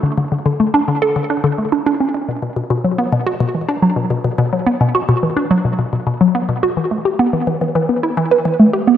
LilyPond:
\new Staff \with { instrumentName = "Synth arpeggio sound" } { \clef bass \time 4/4 \key b \minor \tempo 4 = 107 d16 d16 d16 d16 a16 d'16 d16 a'16 d16 d'16 d16 a16 d'16 d'16 cis'16 d'16 | b,16 b,16 b,16 b,16 fis16 b16 b,16 fis'16 b,16 e16 d'16 fis16 b,16 b,16 b,16 b,16 | fis16 b16 b,16 fis'16 b,16 e16 d'16 fis16 b,16 b,16 b,16 b,16 fis16 b16 b,16 fis'16 | e16 a16 g'16 b16 e16 e16 e16 e16 b16 e'16 e16 b'16 e16 a16 g'16 b16 | }